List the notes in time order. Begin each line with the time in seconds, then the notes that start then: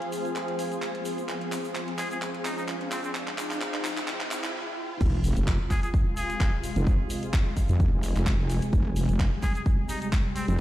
Already playing: F3 C4 F4 G#4 C5 G#5, riser
0.02 closed hi-hat
0.12 open hi-hat, shaker
0.25 closed hi-hat, shaker
0.35 clap, closed hi-hat, shaker
0.48 closed hi-hat
0.59 open hi-hat, shaker
0.72 closed hi-hat, shaker
0.82 clap, closed hi-hat, shaker
0.95 closed hi-hat
1.05 open hi-hat, shaker
1.18 closed hi-hat, shaker
1.29 clap, closed hi-hat, shaker
1.41 closed hi-hat
1.52 clap, open hi-hat, shaker
1.64 shaker
1.75 clap, closed hi-hat, shaker
1.88 closed hi-hat
1.98 G#4, clap, open hi-hat, shaker
2.11 G#4, closed hi-hat, shaker
2.22 clap, closed hi-hat, shaker
2.34 G5, closed hi-hat
2.45 D#4, clap, open hi-hat, shaker
2.58 D#4, closed hi-hat, shaker
2.68 clap, closed hi-hat, shaker
2.81 closed hi-hat
2.91 C4, clap, open hi-hat, shaker
3.04 C4, closed hi-hat, shaker
3.15 clap, closed hi-hat, shaker
3.27 clap, closed hi-hat
3.38 clap, open hi-hat, shaker
3.51 clap, shaker
3.61 clap, closed hi-hat, shaker
3.74 clap, closed hi-hat
3.84 clap, open hi-hat, shaker
3.97 clap, shaker
4.08 clap, closed hi-hat, shaker
4.20 clap, closed hi-hat
4.31 clap, open hi-hat, shaker
4.44 clap, shaker
5.01 F1 C3 G#3 F4, kick, closed hi-hat, crash, sub drop, shaker
5.24 open hi-hat, shaker
5.36 F1, closed hi-hat, shaker
5.47 kick, clap, shaker
5.71 G#4, kick, clap, open hi-hat, shaker
5.83 G#4, closed hi-hat, shaker
5.94 kick, closed hi-hat, shaker
6.17 G#4, open hi-hat, shaker
6.30 closed hi-hat, shaker
6.40 kick, clap, closed hi-hat, shaker
6.64 open hi-hat, shaker
6.73 F1 G#5, closed hi-hat, shaker
6.87 kick, closed hi-hat, shaker
7.10 open hi-hat, shaker
7.23 closed hi-hat, shaker
7.33 kick, clap, shaker
7.57 kick, open hi-hat, shaker
7.69 F2, closed hi-hat, shaker
7.80 kick, closed hi-hat, shaker
7.93 F1
8.03 open hi-hat, shaker
8.16 F1, clap, closed hi-hat, shaker
8.26 kick, clap, shaker
8.50 open hi-hat, shaker
8.62 closed hi-hat, shaker
8.73 F1 G3, kick, closed hi-hat, shaker
8.96 open hi-hat, shaker
9.09 F1, closed hi-hat, shaker
9.19 kick, clap, closed hi-hat, shaker
9.40 G#4 G5, kick, clap, open hi-hat, shaker
9.55 G#4, closed hi-hat, shaker
9.66 kick, closed hi-hat, shaker
9.89 D#4, open hi-hat, shaker
10.02 D#4, closed hi-hat, shaker
10.12 kick, clap, closed hi-hat, shaker
10.36 C4, open hi-hat, shaker
10.48 F1 C4, closed hi-hat, shaker